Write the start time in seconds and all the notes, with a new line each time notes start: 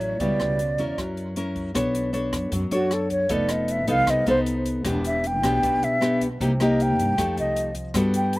Already playing: A1 A2 F#3 C#4 E4
0.00 A2 C#5, closed hi-hat
0.19 C#2 B2 C#3 G3 B3 E4 D5, kick, closed hi-hat
0.40 C#2, cross-stick, closed hi-hat
0.59 closed hi-hat
0.78 E2 C#4 E4 A#4, closed hi-hat
0.98 F#2 F#3, kick, cross-stick, closed hi-hat
1.17 closed hi-hat
1.36 C#4 E4 A#4, closed hi-hat
1.56 kick, closed hi-hat
1.74 B1 B3 D4 A4 C#5, kick, cross-stick, closed hi-hat
1.95 closed hi-hat
2.13 D4 A4 C#5, closed hi-hat
2.33 F#2, kick, cross-stick, closed hi-hat
2.52 F#2 F#3, kick, closed hi-hat
2.71 F#2 D4 F#4 A4 C#5, closed hi-hat
2.91 A4, cross-stick, closed hi-hat
3.10 C#5, kick, closed hi-hat
3.29 F1 F3 B3 D#4 A4 D5, kick, closed hi-hat
3.49 D#5, cross-stick, closed hi-hat
3.68 E5, closed hi-hat
3.87 C2 B3 D#4 A4 F5, kick, closed hi-hat
4.07 C2 C3 D#5, kick, cross-stick, closed hi-hat
4.26 C2 B3 D#4 A4 C5, closed hi-hat
4.46 closed hi-hat
4.66 kick, closed hi-hat
4.85 E1 E3 B3 D4 G4, kick, cross-stick, closed hi-hat
5.05 E5, closed hi-hat
5.24 G5, closed hi-hat
5.43 B1 B3 D4 G4, kick, cross-stick, closed hi-hat
5.62 B1 B2, kick, closed hi-hat
5.82 B1 E5, closed hi-hat
6.01 B3 D4 G4, cross-stick, closed hi-hat
6.21 kick, closed hi-hat
6.40 C2 C3 A#3 D#4 G4, kick, closed hi-hat
6.60 A#3 D#4 G4 D#5, cross-stick, closed hi-hat
6.80 G5, closed hi-hat
6.98 G2, kick, closed hi-hat
7.17 F2 F3 A3 D#4 G4, kick, cross-stick, closed hi-hat
7.37 C2 D#5, closed hi-hat
7.56 closed hi-hat
7.75 kick, closed hi-hat
7.94 G2 G3 B3 F#4 A4, kick, cross-stick, closed hi-hat
8.14 G5, closed hi-hat
8.33 closed hi-hat